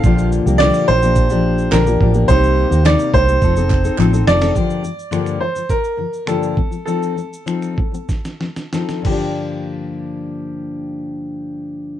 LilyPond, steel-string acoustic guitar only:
\new Staff \with { instrumentName = "Steel-string acoustic guitar" } { \time 4/4 \key g \minor \tempo 4 = 104 <bes, d f bes d' g'>8. <f bes d' g'>16 <bes, d f bes d' g'>8 <f bes d' g'>16 <f bes d' g'>8 <f bes d' g'>8. <bes, d f bes d' g'>16 <f bes d' g'>16 <f bes d' g'>16 <f bes d' g'>16 | <c g bes ees' g'>8. <bes ees' g'>16 <c g bes ees' g'>8 <g bes ees' g'>16 <bes ees' g'>16 <f c' ees' a'>16 <c' ees' a'>8 <c' ees' a'>16 <f c' ees' a'>16 <c' ees' a'>16 <f c' ees' a'>16 <c' ees' a'>16 | <g, d f bes d' g'>8 <g, d f>8 <g, d f bes d' g'>8 <g, d f>16 <g, d f>8 r16 <g, d f>8 <g, d f bes d' g'>8 <f c'>16 <f c'>16 | <f c' ees' a'>8 <f c'>8 <f c' ees' a'>8 <f c'>16 <f c'>8 r16 <f c'>8 <f c' ees' a'>8 <g, d f bes d' g'>8~ |
<g, d f bes d' g'>1 | }